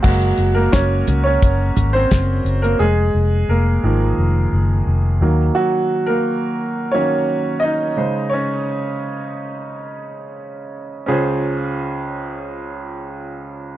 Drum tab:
CC |x---------------|----------------|----------------|----------------|
HH |-xx-x-x-x-x-x-xx|----------------|----------------|----------------|
SD |----o-------o---|----------------|----------------|----------------|
FT |------o---o-----|----------------|----------------|----------------|
BD |o---o---o---o---|----------------|----------------|----------------|

CC |----------------|
HH |----------------|
SD |----------------|
FT |----------------|
BD |----------------|